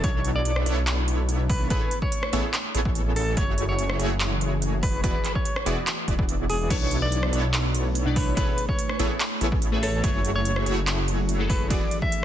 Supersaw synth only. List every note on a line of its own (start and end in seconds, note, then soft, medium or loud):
0.04 0.64 B3 loud
0.04 0.64 D4 medium
0.04 0.64 E4 medium
0.04 0.64 A4 medium
0.04 0.64 C#5 loud
0.66 1.68 B3 loud
0.66 1.68 D4 medium
0.66 1.68 E4 medium
0.66 1.68 A4 medium
0.66 1.68 C#5 loud
1.70 1.82 B3 medium
1.70 1.82 E4 medium
1.70 1.82 G#4 medium
1.70 1.82 A4 medium
1.70 1.82 C#5 medium
2.33 2.44 B3 medium
2.33 2.44 E4 medium
2.33 2.44 G#4 medium
2.33 2.44 A4 medium
2.33 2.44 C#5 medium
2.75 3.35 B3 loud
2.75 3.35 E4 medium
2.75 3.35 G#4 medium
2.75 3.35 A4 medium
2.75 3.35 C#5 loud
3.37 3.97 A3 loud
3.37 3.97 E4 medium
3.37 3.97 F#4 medium
3.37 3.97 G#4 medium
3.37 3.97 C#5 loud
4.00 5.01 A3 loud
4.00 5.01 E4 medium
4.00 5.01 F#4 medium
4.00 5.01 G#4 medium
4.00 5.01 C#5 loud
5.04 5.15 B3 medium
5.04 5.15 E4 medium
5.04 5.15 F#4 medium
5.04 5.15 G#4 medium
5.04 5.15 D5 loud
5.66 5.78 B3 medium
5.66 5.78 E4 medium
5.66 5.78 F#4 medium
5.66 5.78 G#4 medium
5.66 5.78 D5 medium
6.08 6.68 B3 loud
6.08 6.68 E4 medium
6.08 6.68 F#4 medium
6.08 6.68 G#4 medium
6.08 6.68 D5 loud
6.70 7.31 B3 loud
6.70 7.31 D4 medium
6.70 7.31 E4 medium
6.70 7.31 A4 medium
6.70 7.31 C#5 loud
7.33 8.35 B3 loud
7.33 8.35 D4 medium
7.33 8.35 E4 medium
7.33 8.35 A4 medium
7.33 8.35 C#5 loud
8.37 8.48 B3 medium
8.37 8.48 E4 medium
8.37 8.48 G#4 medium
8.37 8.48 A4 medium
8.37 8.48 C#5 medium
9.00 9.11 B3 medium
9.00 9.11 E4 medium
9.00 9.11 G#4 medium
9.00 9.11 A4 medium
9.00 9.11 C#5 medium
9.41 10.01 B3 loud
9.41 10.01 E4 medium
9.41 10.01 G#4 medium
9.41 10.01 A4 medium
9.41 10.01 C#5 loud
10.04 10.64 A3 loud
10.04 10.64 E4 medium
10.04 10.64 F#4 medium
10.04 10.64 G#4 medium
10.04 10.64 C#5 loud
10.66 11.68 A3 loud
10.66 11.68 E4 medium
10.66 11.68 F#4 medium
10.66 11.68 G#4 medium
10.66 11.68 C#5 loud
11.70 11.82 B3 medium
11.70 11.82 E4 medium
11.70 11.82 F#4 medium
11.70 11.82 G#4 medium
11.70 11.82 D5 medium